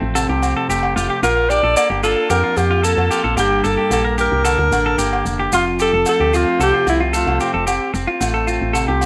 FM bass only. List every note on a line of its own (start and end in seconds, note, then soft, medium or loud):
0.02 0.27 A1 medium
0.29 0.54 C2 loud
0.69 0.94 F1 medium
0.96 1.09 F1 loud
1.23 1.61 A#1 loud
1.63 1.75 A#1 loud
1.90 2.15 G1 loud
2.30 2.43 F2 medium
2.57 2.95 F2 medium
2.97 3.10 F2 medium
3.24 3.37 A#1 medium
3.37 3.62 G1 loud
3.64 3.77 G1 loud
3.91 4.29 A#1 loud
4.32 4.57 C2 loud
4.58 4.71 D2 medium
4.72 4.96 A1 medium
4.98 5.23 G1 medium
5.25 5.50 F1 medium
5.52 5.90 F1 medium
5.93 6.05 F1 loud
6.20 6.45 D2 loud
6.60 6.73 C2 medium
6.87 7.25 C2 medium
7.27 7.39 C2 medium
7.54 7.79 F1 medium
7.94 8.07 F1 medium
8.21 8.59 A1 loud
8.62 8.87 A1 medium
8.88 9.06 C2 loud